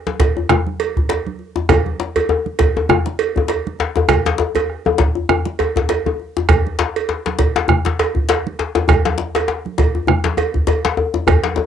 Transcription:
0.07 djembe slap, high conga
0.20 bombo low, cowbell, djembe slap
0.36 high conga, djembe tone
0.49 bombo rim, djembe slap, low conga, djembe bass
0.67 high conga
0.80 cowbell, djembe slap
0.97 bombo low, djembe slap, djembe tone
1.09 cowbell, djembe slap
1.26 high conga
1.39 djembe slap
1.56 djembe slap, djembe tone
1.69 bombo rim, bombo low, cowbell, djembe tone, high conga, low conga, djembe bass
1.86 djembe slap, high conga
2.00 djembe slap
2.16 cowbell, djembe slap, djembe tone
2.29 bombo rim, djembe tone
2.46 djembe slap, high conga
2.59 bombo low, cowbell, djembe slap
2.76 high conga, djembe tone
2.89 bombo rim, djembe tone, low conga, djembe bass
3.06 djembe slap, high conga
3.19 cowbell, djembe slap
3.36 bombo low, djembe slap, djembe tone
3.38 djembe tone
3.48 cowbell, djembe slap
3.67 high conga
3.79 djembe slap
3.96 djembe slap, djembe tone
4.08 bombo rim, bombo low, cowbell, high conga, djembe tone, djembe bass, low conga
4.25 djembe slap, high conga
4.38 djembe slap, djembe tone
4.55 cowbell, djembe slap, djembe tone
4.56 djembe tone
4.70 bombo rim
4.85 djembe slap, high conga, djembe tone
4.98 bombo low, djembe slap
5.15 djembe tone, high conga
5.29 bombo rim, djembe tone, djembe bass, low conga
5.45 djembe slap, high conga
5.59 cowbell, djembe slap, djembe tone
5.76 bombo low, djembe slap, djembe tone
5.89 cowbell, djembe slap
6.06 djembe tone, high conga
6.20 djembe slap
6.37 djembe slap, djembe tone
6.49 bombo rim, bombo low, cowbell, djembe slap, djembe bass, low conga
6.66 djembe slap, high conga
6.79 bombo rim, djembe slap
6.96 cowbell
7.09 djembe slap, high conga
7.26 djembe slap, high conga
7.39 bombo low, cowbell, djembe slap
7.56 djembe slap, djembe tone
7.68 bombo rim, high conga, djembe bass, low conga
7.85 djembe slap, high conga
7.99 bombo rim, cowbell, djembe slap
8.15 bombo low, djembe tone, high conga
8.29 cowbell, djembe slap
8.47 high conga
8.59 bombo rim, djembe slap, high conga
8.75 bombo rim, djembe slap, djembe tone
8.88 bombo rim, bombo low, cowbell, high conga, djembe bass, low conga
9.05 djembe slap, high conga
9.18 djembe slap
9.35 cowbell, djembe slap, djembe tone
9.48 bombo rim, djembe slap
9.65 djembe slap, high conga
9.78 bombo low, cowbell, djembe slap
9.95 djembe tone, high conga
10.07 bombo rim, djembe bass, low conga
10.24 djembe slap, high conga
10.37 cowbell, djembe slap, djembe tone
10.54 bombo low, djembe slap, djembe tone
10.67 cowbell, djembe slap, djembe bass
10.85 djembe slap, high conga
10.97 djembe slap, djembe tone
11.14 djembe slap, djembe tone
11.27 bombo rim, bombo low, cowbell, high conga, djembe bass, low conga
11.44 djembe slap, high conga
11.56 djembe slap, djembe tone

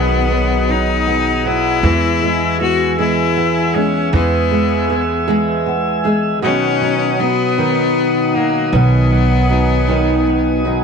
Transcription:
Already playing: B1 B2 D#3 F#3 B3 D#4 G#4 B4 D#5 F#5 D#6
0.29 F#3 B3 D#4 B4
0.68 B2 D#3 F#3 B3 D#4 B4
1.07 B3
1.45 F#3 B3 E4 B4
1.83 E2 E3 G#3 B3 E4 G#4 E5 G#5 E6
2.22 G#3
2.60 G#3 B3 E4 F#4 G#4
2.98 E3 G#3 B3 E4 G#4
3.36 B3
3.74 G#3 B3 C#4 E4 G#4
4.13 E2 E3 G#3 B3 E4 G#4
4.51 G#3
4.89 G#3 B3 E4 G#4
5.28 E3 G#3 B3 E4 G#4
5.66 B3
6.04 G#3 B3 E4 G#4
6.42 B1 B2 D#3 F#3 B3 C#4 D#4 F#4 B4 D#5 F#5 D#6
6.81 F#3
7.19 F#3 B3 D#4 B4
7.58 B2 D#3 F#3 B3 D#4 B4
8.35 F#3 A#3 D#4
8.73 B1 B2 D#3 F#3 B3 D#4 B4 G#5
9.12 F#3
9.49 F#3 B3 D#4 B4
9.87 B2 D#3 F#3 B3 D#4 B4
10.27 B3
10.65 F#3 B3 D#4 B4

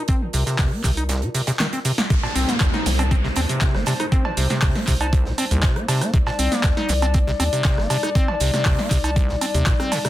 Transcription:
Already playing: F4 A#4 D5 A5
0.08 C4, kick, closed hi-hat, shaker
0.21 D#3
0.33 C2 C3, closed hi-hat, open hi-hat, shaker
0.46 C3, snare, closed hi-hat, shaker
0.58 D#2 C3, kick, snare, clap, closed hi-hat, open hi-hat, shaker
0.72 A#3
0.84 C2 C3, kick, clap, closed hi-hat, open hi-hat, shaker
0.97 D#4, closed hi-hat, shaker
1.09 C2, snare, closed hi-hat, shaker
1.22 C3, closed hi-hat
1.34 C3, snare, closed hi-hat, open hi-hat, shaker
1.47 C3, snare, closed hi-hat, shaker
1.59 D#3, snare, clap, closed hi-hat, shaker
1.73 C4, snare, closed hi-hat
1.85 C3, snare, closed hi-hat, open hi-hat, shaker
1.98 A#3, snare, closed hi-hat, shaker
2.10 C2 C3 G3 D#4 C5, kick, closed hi-hat, downlifter, shaker
2.23 A#2, snare, cowbell
2.35 C2 C4, closed hi-hat, open hi-hat, shaker
2.48 A#3, snare, closed hi-hat, shaker
2.60 D#2 C3, kick, snare, clap, closed hi-hat, cowbell, shaker
2.74 D#4, snare
2.86 C2 C3, closed hi-hat, open hi-hat, shaker
2.99 C4, closed hi-hat, cowbell, shaker
3.11 C4, kick, closed hi-hat, shaker
3.24 C3, snare
3.36 D#2 C4, closed hi-hat, open hi-hat, cowbell, shaker
3.49 C3, closed hi-hat, shaker
3.61 C3, kick, snare, clap, closed hi-hat, shaker
3.75 G1 A#3, cross-stick, snare
3.86 C3, closed hi-hat, open hi-hat, cowbell, shaker
4.00 D#4, cross-stick, closed hi-hat, shaker
4.12 C4, kick, closed hi-hat, shaker
4.25 D#3, cowbell
4.37 C2 C3, closed hi-hat, open hi-hat, shaker
4.50 C3, snare, closed hi-hat, shaker
4.62 D#2 C3, kick, snare, clap, closed hi-hat, open hi-hat, cowbell, shaker
4.75 A#3, snare
4.87 C2 C3, kick, clap, closed hi-hat, open hi-hat, shaker
5.01 D#4, closed hi-hat, cowbell, shaker
5.13 C2, kick, closed hi-hat, shaker
5.25 C3, snare
5.38 C4, closed hi-hat, open hi-hat, cowbell, shaker
5.51 C2 D#2, closed hi-hat, shaker
5.62 C3, kick, snare, clap, closed hi-hat, shaker
5.76 A#3, cross-stick, closed hi-hat
5.88 C3, snare, closed hi-hat, open hi-hat, cowbell, shaker
6.01 A#3, cross-stick, snare, closed hi-hat, shaker
6.14 C2 C3 D5, kick, closed hi-hat, shaker
6.26 A#2, snare, cowbell
6.39 C2 C4, closed hi-hat, open hi-hat, shaker
6.52 A#3, snare, closed hi-hat, shaker
6.63 D#2 C3, kick, snare, clap, closed hi-hat, cowbell, shaker
6.77 D#4, snare
6.89 C2 C3, closed hi-hat, open hi-hat, shaker
7.02 C4, closed hi-hat, cowbell, shaker
7.14 C4, kick, closed hi-hat, shaker
7.27 C3, snare
7.40 D#2 C4, closed hi-hat, open hi-hat, cowbell, shaker
7.53 C3, closed hi-hat, shaker
7.64 C3, kick, snare, clap, closed hi-hat, shaker
7.78 G1 A#3, cross-stick, snare
7.90 C3, closed hi-hat, open hi-hat, cowbell, shaker
8.03 D#4, cross-stick, closed hi-hat, shaker
8.15 C4, kick, closed hi-hat, shaker
8.28 D#3, cowbell
8.40 C2 C3, closed hi-hat, open hi-hat, shaker
8.54 C3, snare, closed hi-hat, shaker
8.65 D#2 C3, kick, snare, clap, closed hi-hat, open hi-hat, cowbell, shaker
8.79 A#3, snare
8.90 C2 C3, kick, clap, closed hi-hat, open hi-hat, shaker
9.04 D#4, closed hi-hat, cowbell, shaker
9.16 C2, kick, closed hi-hat, shaker
9.29 C3, snare
9.41 C4, closed hi-hat, open hi-hat, cowbell, shaker
9.54 D#2 C3, closed hi-hat, shaker
9.66 A#2, kick, snare, clap, closed hi-hat, shaker
9.80 C4, cross-stick, closed hi-hat
9.92 C3, snare, closed hi-hat, open hi-hat, cowbell, shaker
10.04 C3, cross-stick, snare, closed hi-hat, shaker

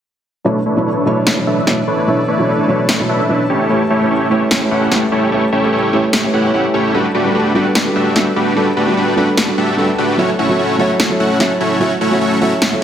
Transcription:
0.45 B2 E3 F#3 A3 B3 C#4 D4 E4 A4 B4 C#5
0.66 A3 D4 E4 B4 C#5
0.76 B2 F#3 A3 D4 E4 C#5
0.86 A3 D4 E4 B4 C#5
1.05 B2 F#3 A3 D4 E4 B4 C#5
1.27 A3 D4 E4 B4 C#5, snare
1.37 B2 F#3 A3 D4 E4 C#5
1.47 A3 D4 E4 B4 E5
1.66 B2 F#3 A3 D4 E4 B4 C#5 E5, snare
1.88 A3 D4 E4 B4 C#5
2.07 B2 F#3 A3 D4 E4 B4 C#5
2.28 A3 D4 E4 B4 C#5
2.38 B2 F#3 A3 D4 E4 C#5
2.48 A3 D4 E4 B4 C#5
2.67 B2 F#3 A3 D4 E4 B4 C#5
2.89 A3 D4 E4 B4 C#5, snare
2.99 B2 F#3 A3 D4 E4 C#5
3.09 A3 D4 E4 B4 E5
3.28 B2 F#3 A3 D4 E4 B4 C#5 E5
3.50 G3 A3 C#4 E4 G4 C#5
3.69 A3 C#4 E4 G4 B4 C#5
3.90 A3 C#4 E4 G4 C#5
4.01 A3 E4 G4 B4 C#5
4.11 A3 C#4 E4 G4 C#5
4.30 A3 C#4 E4 G4 B4 C#5
4.51 A3 C#4 E4 G4 C#5, snare
4.61 A3 E4 G4 B4 C#5
4.71 A3 C#4 E4 G4 F#5
4.90 A3 C#4 E4 G4 B4 C#5 F#5, snare
5.12 A3 C#4 E4 G4 C#5
5.31 A3 C#4 E4 G4 B4 C#5
5.52 A3 C#4 E4 G4 C#5
5.63 A3 E4 G4 B4 C#5
5.73 A3 C#4 E4 G4 C#5
5.92 A3 C#4 E4 G4 B4 C#5
6.13 A3 C#4 E4 G4 C#5, snare
6.23 A3 E4 G4 B4 C#5
6.33 A3 C#4 E4 G4 F#5
6.44 A3 E4 G4 B4 C#5
6.53 A3 C#4 E4 G4 B4 C#5 F#5
6.74 A3 C#4 E4 G4 C#5
6.93 G3 A3 B3 D4 F#4 G4 A4 B4
7.14 A3 D4 F#4 G4 B4
7.25 G3 D4 F#4 A4 B4
7.35 A3 D4 F#4 G4 B4
7.54 G3 A3 D4 F#4 G4 A4 B4
7.75 A3 D4 F#4 G4 B4, snare
7.86 G3 D4 F#4 A4 B4
7.96 A3 D4 F#4 G4 E5
8.15 G3 A3 D4 F#4 G4 A4 B4 E5, snare
8.36 A3 D4 F#4 G4 B4
8.55 G3 A3 D4 F#4 G4 A4 B4
8.77 A3 D4 F#4 G4 B4
8.87 G3 D4 F#4 A4 B4
8.97 A3 D4 F#4 G4 B4
9.16 G3 A3 D4 F#4 G4 A4 B4
9.37 A3 D4 F#4 G4 B4, snare
9.48 G3 D4 F#4 A4 B4
9.58 A3 D4 F#4 G4 E5
9.77 G3 A3 D4 F#4 G4 A4 B4 E5
9.98 A3 D4 F#4 G4 B4
10.18 F#3 A3 C#4 E4 F#4 A4 C#5 E5
10.39 A3 C#4 E4 F#4 C#5
10.49 F#3 F#4 A4 C#5 E5
10.59 A3 C#4 E4 F#4 C#5
10.78 F#3 A3 C#4 E4 F#4 A4 C#5 E5
11.00 A3 C#4 E4 F#4 C#5, snare
11.10 F#3 F#4 A4 C#5 E5
11.20 A3 C#4 E4 F#4 F#5
11.39 F#3 A3 C#4 E4 F#4 A4 C#5 E5 F#5, snare
11.60 A3 C#4 E4 F#4 C#5
11.80 F#3 A3 C#4 E4 F#4 A4 C#5 E5
12.01 A3 C#4 E4 F#4 C#5
12.11 F#3 F#4 A4 C#5 E5
12.21 A3 C#4 E4 F#4 C#5
12.40 F#3 A3 C#4 E4 F#4 A4 C#5 E5
12.62 A3 C#4 E4 F#4 C#5, snare
12.72 F#3 F#4 A4 C#5 E5

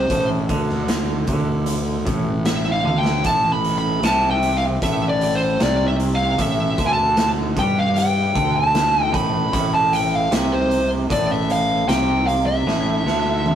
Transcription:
Already playing: C5
0.10 A1 A2, kick, closed hi-hat
0.49 D2 D3, kick, closed hi-hat
0.69 snare
0.88 snare, closed hi-hat
1.27 D2 D3, kick, closed hi-hat
1.66 closed hi-hat
2.06 A1 A2, kick, closed hi-hat
2.45 E5, snare, closed hi-hat
2.72 F5
2.84 D2 D3, high tom
2.98 G5
3.05 snare
3.24 A1 A2 A5, kick, closed hi-hat
3.52 B5
3.64 closed hi-hat
3.78 B5
4.02 C2 C3 A5, snare, closed hi-hat
4.31 G5
4.43 closed hi-hat
4.57 F5
4.82 A1 A2 E5, kick, closed hi-hat
5.09 D5
5.21 closed hi-hat
5.35 C5
5.60 C2 C3 D5, snare, closed hi-hat
5.88 E5
6.00 closed hi-hat
6.15 F5
6.38 A1 A2 E5, kick, closed hi-hat
6.78 D2 D3, kick, closed hi-hat
6.86 G#5
6.93 A5
7.17 snare, closed hi-hat
7.56 G2 G3 G5, kick, closed hi-hat
7.79 F5
7.96 G5, closed hi-hat
8.35 D2 D3, kick, closed hi-hat
8.56 A5
8.75 snare, closed hi-hat
9.03 G5
9.13 A1 A2 B5, kick, closed hi-hat
9.52 A1 A2 B5, kick, closed hi-hat
9.75 A5
9.93 G5, closed hi-hat
10.15 F5
10.31 C2 C3 E5, snare, closed hi-hat
10.53 C5
10.71 closed hi-hat
11.10 A1 A2 D5, kick, closed hi-hat
11.31 E5
11.50 F5, closed hi-hat
11.88 C2 C3 G5, snare, closed hi-hat
12.27 F5, closed hi-hat
12.46 E5
12.66 A1 A2, snare
13.05 D2 D3, snare
13.46 high tom

